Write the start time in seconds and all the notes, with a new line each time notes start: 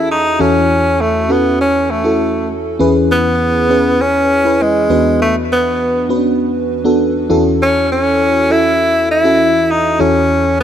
Already playing: C#4 E4 F#4 G#4 A4
0.11 D#4
0.39 E2 E3 C#4 E4 F#4 A4
1.01 A3
1.29 B3 C#4 E4 F#4 A4
1.61 C#4
1.90 A3
2.04 C#4 E4 F#4 A4
2.79 E2 E3 C#4 E4 G#4 B4
3.11 B3
3.69 C#4 E4 G#4 B4
4.01 C#4
4.45 C#4 E4 G#4 B4
4.62 G#3
4.90 E2 E3 B3 D4 F#4 B4
5.22 A3
5.52 B3
6.09 B3 C#4 F#4 B4
6.16 D4
6.84 B3 D4 F#4 A4
7.30 E2 E3 C#4 E4 F#4 A4
7.62 C#4
7.92 C#4
8.49 C#4 E4 F#4 A4
9.11 E4
9.24 C#4 E4 F#4 A4
9.71 D#4
9.99 E2 E3 C#4 E4 F#4 A4